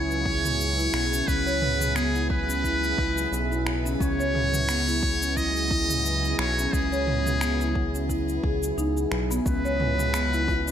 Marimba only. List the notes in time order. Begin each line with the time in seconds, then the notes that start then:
Already playing: E4
0.25 E4
0.78 E4
1.12 C#4
1.28 C#4
1.46 C#5
1.96 B3
2.15 E4
2.49 C#4
2.64 E4
2.98 E4
3.51 E4
3.85 C#4
4.01 C#4
4.19 C#5
4.69 B3
4.87 E4
5.21 C#4
5.37 E4
5.71 E4
6.24 E4
6.58 C#4
6.73 C#4
6.92 C#5
7.42 B3
7.60 E4
7.94 C#4
8.10 E4
8.44 G#4
8.78 D#4
8.97 G#4
9.31 B3
9.46 C#4
9.65 C#5
10.14 B3
10.33 E4
10.67 C#4